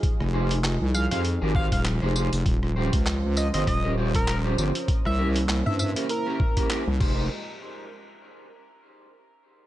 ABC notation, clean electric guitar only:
X:1
M:4/4
L:1/16
Q:"Swing 16ths" 1/4=99
K:Fm
V:1 name="Clean electric guitar"
z2 [EGAc] z4 [EGAc] z [EGAB] [EGAc] z2 [EGAc] [EGAc] z | z2 [DFGc] z4 [DFGc] z [DFGB] [DFGc] z2 [DFGc] [DFGc] z | z2 [D=EGB] z4 [DEGB] z [DEGB] z [DEGB] [DEGB] z [_EGAc]2 | z16 |]